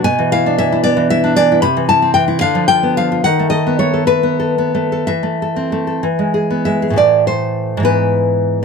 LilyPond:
\new Staff \with { instrumentName = "Nylon-string guitar" } { \time 6/8 \key a \minor \tempo 4. = 70 << { gis''8 f''8 e''8 d''8 e''8 d''8 | b''8 a''8 g''8 f''8 g''8 f''8 | fis''8 dis''8 cis''8 b'4. | e''2~ e''8 e''8 |
d''8 c''4 b'4. | } \\ { b,16 e16 e'16 d'16 e16 e'16 b16 e16 e'16 d'16 e16 e'16 | c16 e16 e'16 c'16 e16 e'16 d16 f16 f'16 b16 f16 f'16 | dis16 a16 a'16 b16 a16 a'16 a16 b16 a'16 b16 a16 a'16 | e16 a16 a'16 c'16 a16 a'16 e16 gis16 gis'16 b16 gis16 gis'16 |
<a, e a>4. <gis, e b>4. | } >> }